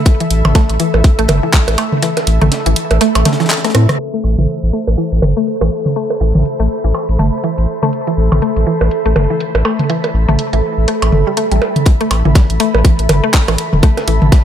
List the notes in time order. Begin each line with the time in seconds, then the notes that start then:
Already playing: A4 E5 B5
0.05 kick, closed hi-hat
0.20 E3, closed hi-hat
0.30 A1, closed hi-hat
0.45 A1, mid tom, percussion blips
0.55 A3, kick, snare, closed hi-hat
0.70 A1, closed hi-hat
0.79 E3, closed hi-hat
0.94 A1, percussion blips
1.04 kick, closed hi-hat
1.19 A1 A3, closed hi-hat
1.28 G1, closed hi-hat, mid tom, percussion blips
1.43 E3
1.53 kick, snare, clap, closed hi-hat, open hi-hat
1.68 A1, closed hi-hat, percussion blips
1.78 A3, closed hi-hat, percussion blips
1.92 mid tom
2.02 E3, closed hi-hat
2.17 snare, closed hi-hat, percussion blips
2.27 A1, closed hi-hat
2.41 A1 A3, closed hi-hat, mid tom
2.52 snare, closed hi-hat
2.66 A1 E3, closed hi-hat
2.76 closed hi-hat
2.91 A1, closed hi-hat, percussion blips
3.01 A3, closed hi-hat
3.15 A1, closed hi-hat, percussion blips
3.25 A3, snare, closed hi-hat, mid tom
3.32 snare, closed hi-hat
3.40 E3, snare, closed hi-hat
3.45 snare, closed hi-hat
3.50 snare, clap, closed hi-hat
3.57 snare, closed hi-hat
3.64 A3, cross-stick, snare, closed hi-hat
3.69 snare, closed hi-hat
3.75 A2 C4, cross-stick, closed hi-hat, percussion blips
3.89 cross-stick, closed hi-hat, mid tom
3.99 A4 C5, closed hi-hat
4.14 A3
4.24 A1, percussion blips
4.38 A1 E3 E5, mid tom
4.48 closed hi-hat
4.63 A1, closed hi-hat
4.73 A3
4.83 B5
4.87 A1, percussion blips
4.98 E3, closed hi-hat
5.12 A1, closed hi-hat
5.22 G1, mid tom, percussion blips
5.37 A3
5.47 closed hi-hat
5.61 A1 E3, closed hi-hat, percussion blips
5.86 closed hi-hat, mid tom
5.96 A3, closed hi-hat
6.10 closed hi-hat, percussion blips
6.21 A1 E3
6.35 A1, mid tom
6.45 closed hi-hat
6.60 A1 A3, closed hi-hat
6.84 A1 E3
6.94 closed hi-hat, percussion blips
7.09 A1, closed hi-hat
7.19 G1 A3, mid tom
7.44 E3, closed hi-hat
7.58 A1, closed hi-hat
7.83 A3, closed hi-hat, mid tom
7.93 closed hi-hat
8.07 E3, closed hi-hat
8.17 A1
8.32 A1, mid tom, percussion blips
8.42 A3, closed hi-hat
8.56 A1, closed hi-hat
8.67 E3
8.81 A1, percussion blips
8.91 closed hi-hat
9.06 A1 A3, closed hi-hat
9.16 G1, mid tom, percussion blips
9.30 E3
9.40 closed hi-hat
9.55 A1, closed hi-hat, percussion blips
9.65 A3, percussion blips
9.79 closed hi-hat, mid tom
9.90 E3, closed hi-hat
10.04 closed hi-hat, percussion blips
10.14 A1
10.28 A1 A3, mid tom
10.39 closed hi-hat
10.53 A1 E3, closed hi-hat
10.78 A1
10.88 A3, closed hi-hat
11.02 A1, closed hi-hat, percussion blips
11.12 G1, mid tom
11.27 G3
11.37 A3, closed hi-hat
11.51 A1 G3, closed hi-hat
11.62 percussion blips
11.76 closed hi-hat, mid tom
11.86 kick, closed hi-hat
12.01 A3, closed hi-hat
12.11 A1, closed hi-hat, percussion blips
12.25 A1 E3, mid tom
12.35 kick, snare, closed hi-hat
12.50 A1, closed hi-hat
12.60 A3, closed hi-hat
12.75 A1, percussion blips
12.85 E3, kick, closed hi-hat
12.99 A1, closed hi-hat
13.09 G1, closed hi-hat, mid tom, percussion blips
13.24 A3
13.34 kick, snare, clap, closed hi-hat, open hi-hat
13.48 A1 E3, closed hi-hat, percussion blips
13.58 closed hi-hat
13.73 E1, mid tom
13.83 A3, kick, closed hi-hat
13.97 snare, closed hi-hat, percussion blips
14.08 A1 E3, closed hi-hat
14.22 A1, mid tom
14.32 kick, snare, closed hi-hat